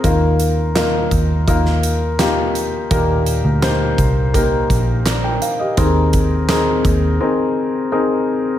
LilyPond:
<<
  \new Staff \with { instrumentName = "Grand piano" } { \time 4/4 \key ees \major \tempo 4 = 84 << { r1 | r2. <d'' bes''>16 <bes' g''>16 f''16 <g' ees''>16~ | <g' ees''>16 r2. r8. | } \\ { <bes ees' f' bes'>4 <bes ees' f' bes'>4 <bes ees' f' bes'>4 <bes ees' f' g'>4 | <bes ees' g' bes'>4 <bes ees' g' c''>4 <bes ees' g' bes'>4 r4 | <c' ees' aes' bes'>4 <c' ees' aes' bes'>4 <c' ees' aes' bes'>4 <c' ees' aes' bes'>4 | } >> }
  \new Staff \with { instrumentName = "Grand piano" } { \clef bass \time 4/4 \key ees \major ees4. r2 r8 | bes,4. r2 r8 | ees4. r2 r8 | }
  \new Staff \with { instrumentName = "Picked electric bass" } { \clef bass \time 4/4 \key ees \major ees,4. ees,8 ees,2 | ees,8. d,8. c,4 bes,,4 r8 | ees,4. ees,8 r2 | }
  \new DrumStaff \with { instrumentName = "Drums" } \drummode { \time 4/4 <hh bd>8 hh8 <hc hh sn>8 <hh bd>8 <hh bd>16 sn16 hh8 <hc hh sn>8 hh8 | <hh bd>8 hh8 <hc hh sn>8 <hh bd>8 <hh bd>8 <hh bd>8 <hc hh sn>8 hh8 | <hh bd>8 <hh bd>8 <hc hh sn>8 <hh bd>8 r4 r4 | }
>>